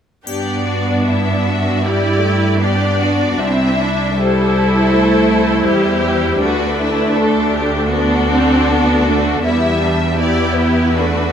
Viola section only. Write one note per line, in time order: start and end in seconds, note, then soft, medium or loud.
0.26 1.80 B3 soft
0.26 1.80 D4 soft
1.83 2.23 G3 soft
1.83 2.62 E4 soft
2.22 2.62 A3 soft
2.61 3.40 B3 soft
2.61 3.77 D4 soft
3.40 3.78 C4 soft
3.78 4.17 D4 soft
4.17 4.91 G3 soft
4.17 6.38 E4 soft
4.93 5.67 A3 soft
5.67 6.03 G3 soft
6.04 6.41 G3 medium
6.42 7.93 A3 soft
6.42 7.90 D4 soft
7.93 8.31 B3 soft
7.93 9.42 D4 medium
8.32 8.69 C4 soft
8.70 9.08 B3 soft
9.08 9.45 A3 soft
9.46 10.20 G3 soft
9.46 10.21 B3 soft
10.22 10.97 B3 soft
10.22 10.97 E4 soft
10.98 11.32 A3 soft
10.98 11.32 D4 soft